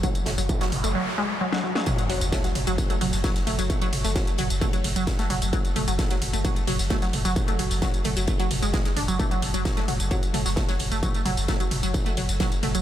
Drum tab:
RD |x-x-xx-x--------|xxx-x-x-x-x-x-x-|x-x-x-xxx-x-x-x-|xxx-x-x-x-x-x-x-|
HH |xxooxxox--------|xxoxxxoxxxooxxox|xxooxxoxxxoxxxox|xxoxxxoxxxooxxox|
TB |xx-xxx-x--------|xx-xxx-xxx-xxx-x|xx-xxx-xxx-xxx-x|xx-xxx-xxx-xxx-x|
SD |--o--o-------o-o|----oo-----ooo-o|----o-------ooo-|----oo-----ooo-o|
T2 |o-o-o-o---------|o-o-o-o-o-o-o-o-|o-o-o-o-o-o-o-o-|o-o-o-o-o-o-o-o-|
BD |o---o-----------|o---o---o---o---|o---o---o---o---|o---o---o---o---|

RD |x-x-x-xxx-xxx-x-|xxx-x-x-x-x-x-x-|x-x-x-xxx-xxx-x-|
HH |xxooxxoxxxoxxxox|xxoxxxoxxxooxxox|xxooxxoxxxoxxxox|
TB |xx-xxx-xxx-xxx-x|xx-xxx-xxx-xxx-x|xx-xxx-xxx-xxx-x|
SD |----o-------ooo-|----oo-----ooo-o|----o-------ooo-|
T2 |o-o-o-o-o-o-o-o-|o-o-o-o-o-o-o-o-|o-o-o-o-o-o-o-o-|
BD |o---o---o---o---|o---o---o---o---|o---o---o---o---|